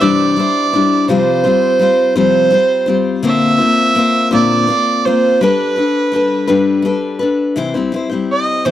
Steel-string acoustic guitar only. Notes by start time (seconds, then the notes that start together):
0.01 C3 E3 G3 D4 E4 C5
0.37 G3 D4 E4 C5
0.73 G3 D4 E4 C5
1.08 C3 F3 G3 C4 F4 C5
1.44 G3 C4 F4 C5
1.79 G3 C4 F4 C5
2.16 C3 F3 G3 C4 F4 C5
2.50 G3 C4 F4 C5
2.86 G3 C4 F4 C5
3.23 A#2 D3 A#3 C4 F4 C5
3.58 A#3 C4 F4 C5
3.95 A#3 C4 F4 C5
4.31 A#2 D3 A#3 C4 F4 C5
4.67 A#3 C4 F4 C5
5.06 A#3 C4 F4 C5
5.41 G3 D4 A4 B4
5.76 D4 A4 B4
6.12 G3 D4 A4
6.16 B4
6.47 G3 D4 A4 B4
6.82 G3 D4 A4 B4
7.19 D4 A4 B4
7.56 C3 E3 G3 C4 E4 C5
7.74 G3 C4 E4 C5
7.92 G3 C4 E4
7.96 C5
8.10 G3 C4 E4 C5
8.65 C3 E3 G3 C4 E4 C5